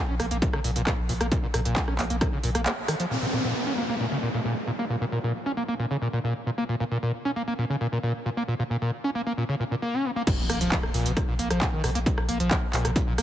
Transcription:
0.09 A#1 C#4
0.20 A#1 A#3, cross-stick, open hi-hat
0.31 A#1 A#3, closed hi-hat
0.42 A#2, kick, closed hi-hat
0.53 A#1 C#3, cross-stick
0.64 A#1 A#2, open hi-hat
0.76 A#1 A#2, closed hi-hat
0.87 A#2, kick, cross-stick, clap, closed hi-hat
0.98 A#1
1.09 A#1 A#2, open hi-hat
1.21 A#1 A#3, cross-stick, closed hi-hat
1.32 A#2, kick, closed hi-hat
1.43 A#1 A#2
1.54 A#1 A#2, cross-stick, open hi-hat
1.65 A#1 A#2, closed hi-hat
1.76 kick, clap, closed hi-hat
1.88 A#1 C#4, cross-stick
1.99 A#1 A#3, clap, open hi-hat
2.10 A#1 A#3, closed hi-hat
2.21 A#2, kick, cross-stick, closed hi-hat
2.33 A#1 C#3
2.43 A#1 A#2, open hi-hat
2.55 A#1 A#3, cross-stick, closed hi-hat
2.66 A#3, clap, closed hi-hat
2.88 D#3, cross-stick, open hi-hat
3.00 F3, closed hi-hat
3.11 A#2, downlifter
3.22 A#2
3.33 A#2
3.44 A#2
3.67 C#4
3.78 A#3
3.89 A#3
4.00 A#2
4.12 C#3
4.23 A#2
4.34 A#2
4.45 A#2
4.67 A#2
4.79 A#3
4.90 A#2
5.01 A#2
5.12 A#2
5.24 A#2
5.46 C#4
5.57 A#3
5.68 A#3
5.79 A#2
5.91 C#3
6.02 A#2
6.13 A#2
6.24 A#2
6.46 A#2
6.58 A#3
6.69 A#2
6.80 A#2
6.91 A#2
7.03 A#2
7.25 C#4
7.36 A#3
7.47 A#3
7.59 A#2
7.70 C#3
7.81 A#2
7.92 A#2
8.03 A#2
8.26 A#2
8.37 A#3
8.48 A#2
8.59 A#2
8.70 A#2
8.82 A#2
9.04 C#4
9.15 A#3
9.27 A#3
9.38 A#2
9.49 C#3
9.60 A#2
9.71 A#2
9.82 A#3
9.94 C#4
10.05 A#3
10.16 A#3
10.27 A#2, kick, closed hi-hat, crash, impact
10.39 A#1
10.49 A#1 A#3, cross-stick, open hi-hat
10.61 A#1 F3, closed hi-hat
10.72 F3, kick, clap, closed hi-hat
10.83 A#1, cross-stick
10.94 A#1 A#2, open hi-hat
11.06 A#1 B2, closed hi-hat
11.17 A#2, kick, cross-stick, closed hi-hat
11.28 A#1 A#2
11.39 A#1 A#3, open hi-hat
11.50 A#1 F3, cross-stick, closed hi-hat
11.61 A#2, kick, clap, closed hi-hat
11.73 A#1 D#3
11.84 A#1 B2, cross-stick, open hi-hat
11.95 A#1 A#3, closed hi-hat
12.06 A#2, kick, closed hi-hat
12.18 A#1, cross-stick
12.29 A#1 A#3, open hi-hat
12.40 A#1 F3, closed hi-hat
12.51 F3, kick, cross-stick, clap, closed hi-hat
12.62 A#1
12.73 A#1 A#2, clap, open hi-hat
12.85 A#1 B2, cross-stick, closed hi-hat
12.96 A#2, kick, closed hi-hat
13.07 A#1 A#2
13.18 A#1 A#3, cross-stick, open hi-hat

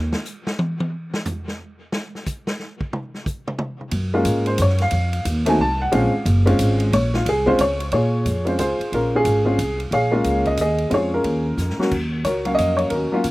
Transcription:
Already playing: D#2
0.12 snare
0.25 hi-hat pedal
0.47 snare
0.59 high tom
0.80 high tom
1.14 snare
1.25 floor tom, hi-hat pedal
1.48 snare
1.92 snare
2.15 snare
2.26 kick, hi-hat pedal
2.47 snare
2.60 snare
2.81 kick
2.93 mid tom
3.14 snare
3.26 kick, hi-hat pedal
3.47 mid tom
3.59 mid tom
3.81 mid tom
3.91 F#2, kick, ride
4.14 G#3 A#3 C#4 F4
4.25 G#2, kick, hi-hat pedal, ride
4.46 C5, ride
4.58 F#2, kick, hi-hat pedal, ride
4.62 C#5
4.69 snare
4.78 F5, snare, ride
4.91 F2, kick, ride
5.13 ride
5.25 D#2, kick, hi-hat pedal, ride
5.46 A3 C4 D#4 F#4 G#5, ride
5.59 C2 A5, kick
5.82 F#5
5.92 A#1 G#3 C4 C#4 F4 F5, kick, ride
6.14 muted upright bass stroke
6.25 F#1, kick, hi-hat pedal, ride
6.46 G#3 C4 C#4 F4, ride
6.59 G#1, kick, hi-hat pedal, ride
6.80 ride
6.92 A#1 C#5, kick, ride
7.14 F4, snare
7.26 C2 G#4, kick, snare, ride
7.46 G#3 C4 C#4 F4 C5, kick
7.59 C#2 C#5, kick, hi-hat pedal, ride
7.80 ride
7.92 A#2 F4 G#4 C#5, kick, ride
8.25 F2, kick, hi-hat pedal, ride
8.45 G#3 C4 C#4 F4 C5, ride
8.58 C#2 F4 G#4 C5, kick, hi-hat pedal, ride
8.79 muted upright bass stroke, ride
8.92 A#1 C#4 F4 A#4, kick, ride
9.15 C#4 F4 G#4
9.25 G#1, kick, hi-hat pedal, ride
9.45 G#3 C4 C#4 F4
9.59 C2, kick, hi-hat pedal, ride
9.80 ride
9.91 A#1 G#4 C#5 F5, kick, ride
10.11 G#3 A#3 C#4 F4
10.24 C#2, kick, hi-hat pedal, ride
10.45 D#5, kick, ride
10.57 D#2 G#4 D#5, kick, hi-hat pedal, ride
10.78 ride
10.90 F2 G#3 C4 C#4 F4, kick, ride
10.94 F4 G#4 C#5
11.14 C#4 F4 A#4
11.24 D#2, kick, ride
11.57 F2, snare, hi-hat pedal
11.70 snare
11.78 F#3 A#3 C#4 F#4, muted upright bass stroke, snare
11.91 D#2, kick, crash
12.25 C#2 F#4 A#4 C#5, kick, hi-hat pedal, ride
12.45 F#3 A#3 C#4 F5, ride
12.55 F2 D#5, kick, hi-hat pedal, ride
12.77 C#5, ride
12.90 D#2 F#4 A#4, kick, ride
12.94 C#4
13.12 F#3 A#3 C#4 F4, muted upright bass stroke
13.24 C#2, kick, hi-hat pedal, ride

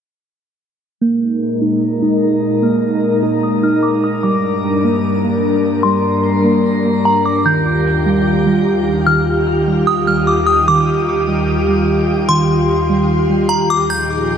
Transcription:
1.01 A#2 G#3 A#3 D#4 A#4 G6
1.61 D#4
2.02 D#4
2.62 A#3 F6
3.23 D#4
3.43 D#6
3.63 D#4 F6
3.83 D6
4.04 D#6
4.23 G2 G3 D4 A#4 D6
4.84 A#3
5.24 A#3
5.83 G3 C6
6.44 A#3
6.85 A#3
7.05 A#5
7.26 D6
7.46 D#2 D#3 F4 G4 G6
8.06 G3
8.47 G3
9.07 D#3 F6
9.67 G3
9.87 D#6
10.07 G3 F6
10.27 D6
10.47 D#6
10.68 D#3 D6
11.28 G3
11.68 G3
12.29 D#3 C6
12.90 G3
13.30 G3
13.49 A#5
13.70 D6
13.90 A#2 F3 D#4 G#4 G6

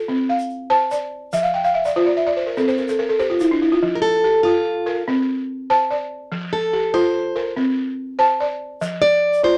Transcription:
Already playing: A4
0.08 C4
0.29 F5
0.39 shaker
0.50 shaker
0.70 C5 A5
0.91 D5, shaker
1.33 F3 E5, shaker
1.43 F5
1.54 G5
1.64 F5, shaker
1.74 E5
1.85 D5, shaker
1.96 F4 C5
2.06 D5
2.17 E5
2.27 D5
2.37 C5
2.47 A#4
2.57 C4 A4, shaker
2.68 C5, shaker
2.77 A#4, shaker
2.88 A4, shaker
2.99 A#4
3.09 A4
3.19 G4 C5, shaker
3.30 F4
3.40 E4, shaker
3.51 D4
3.62 E4
3.72 F4
3.83 F3
3.95 A#4
4.02 A4
4.24 G4
4.43 F4
4.86 A#4
5.08 C4
5.70 C5 A5
5.91 D5
6.32 F3
6.53 A4
6.73 G4
6.94 F4 C5
7.36 A#4
7.57 C4
8.19 C5 A5
8.40 D5
8.81 F3, shaker
9.02 D5
9.33 shaker
9.43 F4 C5

